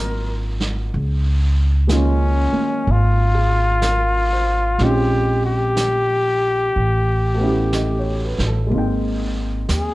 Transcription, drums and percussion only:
0, 0, Header, 1, 2, 480
1, 0, Start_track
1, 0, Tempo, 972447
1, 459, Time_signature, 4, 2, 24, 8
1, 4906, End_track
2, 0, Start_track
2, 0, Title_t, "Drums"
2, 298, Note_on_c, 9, 38, 26
2, 347, Note_off_c, 9, 38, 0
2, 454, Note_on_c, 9, 25, 36
2, 933, Note_off_c, 9, 25, 0
2, 933, Note_on_c, 9, 25, 28
2, 933, Note_on_c, 9, 38, 38
2, 933, Note_on_c, 9, 44, 42
2, 983, Note_off_c, 9, 38, 0
2, 983, Note_off_c, 9, 44, 0
2, 1407, Note_off_c, 9, 25, 0
2, 1407, Note_on_c, 9, 25, 34
2, 1884, Note_off_c, 9, 25, 0
2, 1884, Note_on_c, 9, 25, 33
2, 1884, Note_on_c, 9, 38, 37
2, 1884, Note_on_c, 9, 44, 49
2, 1934, Note_off_c, 9, 38, 0
2, 1934, Note_off_c, 9, 44, 0
2, 2364, Note_off_c, 9, 25, 0
2, 2364, Note_on_c, 9, 25, 29
2, 2364, Note_on_c, 9, 38, 25
2, 2413, Note_off_c, 9, 38, 0
2, 2845, Note_off_c, 9, 25, 0
2, 2845, Note_on_c, 9, 25, 32
2, 2845, Note_on_c, 9, 38, 35
2, 2845, Note_on_c, 9, 44, 48
2, 2895, Note_off_c, 9, 38, 0
2, 2895, Note_off_c, 9, 44, 0
2, 3332, Note_off_c, 9, 25, 0
2, 3332, Note_on_c, 9, 25, 26
2, 3814, Note_off_c, 9, 25, 0
2, 3814, Note_on_c, 9, 25, 29
2, 3814, Note_on_c, 9, 38, 37
2, 3814, Note_on_c, 9, 44, 40
2, 3863, Note_off_c, 9, 38, 0
2, 3863, Note_off_c, 9, 44, 0
2, 4140, Note_on_c, 9, 38, 24
2, 4190, Note_off_c, 9, 38, 0
2, 4298, Note_off_c, 9, 25, 0
2, 4298, Note_on_c, 9, 25, 32
2, 4781, Note_off_c, 9, 25, 0
2, 4781, Note_on_c, 9, 25, 29
2, 4781, Note_on_c, 9, 38, 37
2, 4781, Note_on_c, 9, 44, 49
2, 4831, Note_off_c, 9, 38, 0
2, 4831, Note_off_c, 9, 44, 0
2, 4906, Note_off_c, 9, 25, 0
2, 4906, End_track
0, 0, End_of_file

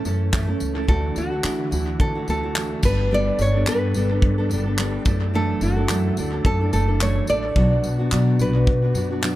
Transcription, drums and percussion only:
0, 0, Header, 1, 2, 480
1, 0, Start_track
1, 0, Key_signature, 2, "major"
1, 0, Tempo, 556070
1, 766, Time_signature, 4, 2, 24, 8
1, 8075, End_track
2, 0, Start_track
2, 0, Title_t, "Drums"
2, 44, Note_on_c, 9, 54, 61
2, 131, Note_off_c, 9, 54, 0
2, 284, Note_on_c, 9, 54, 77
2, 285, Note_on_c, 9, 36, 107
2, 289, Note_on_c, 9, 39, 119
2, 370, Note_off_c, 9, 54, 0
2, 371, Note_off_c, 9, 36, 0
2, 375, Note_off_c, 9, 39, 0
2, 520, Note_on_c, 9, 54, 65
2, 607, Note_off_c, 9, 54, 0
2, 764, Note_on_c, 9, 36, 113
2, 850, Note_off_c, 9, 36, 0
2, 1000, Note_on_c, 9, 54, 62
2, 1087, Note_off_c, 9, 54, 0
2, 1243, Note_on_c, 9, 39, 117
2, 1243, Note_on_c, 9, 54, 85
2, 1329, Note_off_c, 9, 54, 0
2, 1330, Note_off_c, 9, 39, 0
2, 1485, Note_on_c, 9, 54, 66
2, 1572, Note_off_c, 9, 54, 0
2, 1725, Note_on_c, 9, 36, 117
2, 1811, Note_off_c, 9, 36, 0
2, 1966, Note_on_c, 9, 54, 58
2, 2052, Note_off_c, 9, 54, 0
2, 2206, Note_on_c, 9, 54, 76
2, 2208, Note_on_c, 9, 39, 112
2, 2293, Note_off_c, 9, 54, 0
2, 2294, Note_off_c, 9, 39, 0
2, 2440, Note_on_c, 9, 54, 70
2, 2443, Note_on_c, 9, 49, 76
2, 2445, Note_on_c, 9, 36, 104
2, 2526, Note_off_c, 9, 54, 0
2, 2529, Note_off_c, 9, 49, 0
2, 2531, Note_off_c, 9, 36, 0
2, 2923, Note_on_c, 9, 54, 60
2, 3009, Note_off_c, 9, 54, 0
2, 3165, Note_on_c, 9, 54, 83
2, 3166, Note_on_c, 9, 39, 119
2, 3252, Note_off_c, 9, 54, 0
2, 3253, Note_off_c, 9, 39, 0
2, 3404, Note_on_c, 9, 54, 67
2, 3491, Note_off_c, 9, 54, 0
2, 3645, Note_on_c, 9, 36, 114
2, 3732, Note_off_c, 9, 36, 0
2, 3890, Note_on_c, 9, 54, 61
2, 3976, Note_off_c, 9, 54, 0
2, 4126, Note_on_c, 9, 54, 76
2, 4130, Note_on_c, 9, 39, 122
2, 4213, Note_off_c, 9, 54, 0
2, 4216, Note_off_c, 9, 39, 0
2, 4362, Note_on_c, 9, 54, 67
2, 4366, Note_on_c, 9, 36, 112
2, 4448, Note_off_c, 9, 54, 0
2, 4452, Note_off_c, 9, 36, 0
2, 4843, Note_on_c, 9, 54, 58
2, 4929, Note_off_c, 9, 54, 0
2, 5085, Note_on_c, 9, 39, 122
2, 5087, Note_on_c, 9, 54, 87
2, 5171, Note_off_c, 9, 39, 0
2, 5173, Note_off_c, 9, 54, 0
2, 5326, Note_on_c, 9, 54, 62
2, 5412, Note_off_c, 9, 54, 0
2, 5566, Note_on_c, 9, 36, 116
2, 5652, Note_off_c, 9, 36, 0
2, 5808, Note_on_c, 9, 54, 62
2, 5894, Note_off_c, 9, 54, 0
2, 6049, Note_on_c, 9, 39, 120
2, 6049, Note_on_c, 9, 54, 81
2, 6136, Note_off_c, 9, 39, 0
2, 6136, Note_off_c, 9, 54, 0
2, 6278, Note_on_c, 9, 54, 66
2, 6365, Note_off_c, 9, 54, 0
2, 6525, Note_on_c, 9, 36, 114
2, 6611, Note_off_c, 9, 36, 0
2, 6764, Note_on_c, 9, 54, 60
2, 6851, Note_off_c, 9, 54, 0
2, 7008, Note_on_c, 9, 39, 111
2, 7011, Note_on_c, 9, 54, 89
2, 7095, Note_off_c, 9, 39, 0
2, 7097, Note_off_c, 9, 54, 0
2, 7246, Note_on_c, 9, 54, 62
2, 7332, Note_off_c, 9, 54, 0
2, 7486, Note_on_c, 9, 36, 121
2, 7572, Note_off_c, 9, 36, 0
2, 7725, Note_on_c, 9, 54, 64
2, 7811, Note_off_c, 9, 54, 0
2, 7965, Note_on_c, 9, 54, 76
2, 7970, Note_on_c, 9, 39, 121
2, 8051, Note_off_c, 9, 54, 0
2, 8056, Note_off_c, 9, 39, 0
2, 8075, End_track
0, 0, End_of_file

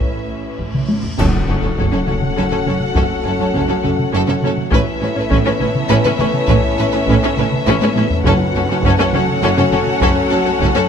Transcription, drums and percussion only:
0, 0, Header, 1, 3, 480
1, 0, Start_track
1, 0, Key_signature, 3, "minor"
1, 0, Tempo, 588813
1, 973, Time_signature, 6, 3, 24, 8
1, 8875, End_track
2, 0, Start_track
2, 0, Title_t, "Taiko and cinematic ensemble drums"
2, 2, Note_on_c, 9, 41, 64
2, 83, Note_off_c, 9, 41, 0
2, 483, Note_on_c, 9, 41, 65
2, 564, Note_off_c, 9, 41, 0
2, 606, Note_on_c, 9, 47, 68
2, 688, Note_off_c, 9, 47, 0
2, 727, Note_on_c, 9, 48, 76
2, 808, Note_off_c, 9, 48, 0
2, 844, Note_on_c, 9, 43, 73
2, 925, Note_off_c, 9, 43, 0
2, 965, Note_on_c, 9, 41, 115
2, 1046, Note_off_c, 9, 41, 0
2, 1449, Note_on_c, 9, 41, 80
2, 1531, Note_off_c, 9, 41, 0
2, 1692, Note_on_c, 9, 47, 64
2, 1773, Note_off_c, 9, 47, 0
2, 1809, Note_on_c, 9, 47, 66
2, 1891, Note_off_c, 9, 47, 0
2, 2052, Note_on_c, 9, 47, 54
2, 2134, Note_off_c, 9, 47, 0
2, 2168, Note_on_c, 9, 47, 66
2, 2250, Note_off_c, 9, 47, 0
2, 2289, Note_on_c, 9, 47, 56
2, 2371, Note_off_c, 9, 47, 0
2, 2407, Note_on_c, 9, 41, 107
2, 2489, Note_off_c, 9, 41, 0
2, 2888, Note_on_c, 9, 41, 77
2, 2969, Note_off_c, 9, 41, 0
2, 3129, Note_on_c, 9, 47, 64
2, 3211, Note_off_c, 9, 47, 0
2, 3252, Note_on_c, 9, 47, 63
2, 3334, Note_off_c, 9, 47, 0
2, 3488, Note_on_c, 9, 47, 59
2, 3569, Note_off_c, 9, 47, 0
2, 3605, Note_on_c, 9, 47, 63
2, 3687, Note_off_c, 9, 47, 0
2, 3730, Note_on_c, 9, 47, 52
2, 3811, Note_off_c, 9, 47, 0
2, 3847, Note_on_c, 9, 41, 118
2, 3929, Note_off_c, 9, 41, 0
2, 4329, Note_on_c, 9, 41, 89
2, 4411, Note_off_c, 9, 41, 0
2, 4567, Note_on_c, 9, 47, 66
2, 4648, Note_off_c, 9, 47, 0
2, 4687, Note_on_c, 9, 47, 73
2, 4769, Note_off_c, 9, 47, 0
2, 4930, Note_on_c, 9, 47, 54
2, 5011, Note_off_c, 9, 47, 0
2, 5046, Note_on_c, 9, 47, 78
2, 5127, Note_off_c, 9, 47, 0
2, 5165, Note_on_c, 9, 47, 62
2, 5246, Note_off_c, 9, 47, 0
2, 5282, Note_on_c, 9, 41, 110
2, 5364, Note_off_c, 9, 41, 0
2, 5763, Note_on_c, 9, 41, 99
2, 5844, Note_off_c, 9, 41, 0
2, 5892, Note_on_c, 9, 37, 50
2, 5974, Note_off_c, 9, 37, 0
2, 6008, Note_on_c, 9, 47, 63
2, 6090, Note_off_c, 9, 47, 0
2, 6131, Note_on_c, 9, 47, 74
2, 6213, Note_off_c, 9, 47, 0
2, 6370, Note_on_c, 9, 48, 106
2, 6452, Note_off_c, 9, 48, 0
2, 6487, Note_on_c, 9, 48, 101
2, 6569, Note_off_c, 9, 48, 0
2, 6605, Note_on_c, 9, 43, 100
2, 6687, Note_off_c, 9, 43, 0
2, 6721, Note_on_c, 9, 41, 117
2, 6802, Note_off_c, 9, 41, 0
2, 7082, Note_on_c, 9, 37, 49
2, 7163, Note_off_c, 9, 37, 0
2, 7200, Note_on_c, 9, 41, 86
2, 7282, Note_off_c, 9, 41, 0
2, 7442, Note_on_c, 9, 47, 70
2, 7524, Note_off_c, 9, 47, 0
2, 7563, Note_on_c, 9, 47, 67
2, 7645, Note_off_c, 9, 47, 0
2, 7807, Note_on_c, 9, 47, 65
2, 7889, Note_off_c, 9, 47, 0
2, 7930, Note_on_c, 9, 47, 65
2, 8011, Note_off_c, 9, 47, 0
2, 8044, Note_on_c, 9, 47, 60
2, 8126, Note_off_c, 9, 47, 0
2, 8162, Note_on_c, 9, 41, 104
2, 8244, Note_off_c, 9, 41, 0
2, 8644, Note_on_c, 9, 41, 91
2, 8726, Note_off_c, 9, 41, 0
2, 8875, End_track
3, 0, Start_track
3, 0, Title_t, "Drums"
3, 972, Note_on_c, 9, 35, 70
3, 972, Note_on_c, 9, 49, 75
3, 1053, Note_off_c, 9, 35, 0
3, 1053, Note_off_c, 9, 49, 0
3, 8875, End_track
0, 0, End_of_file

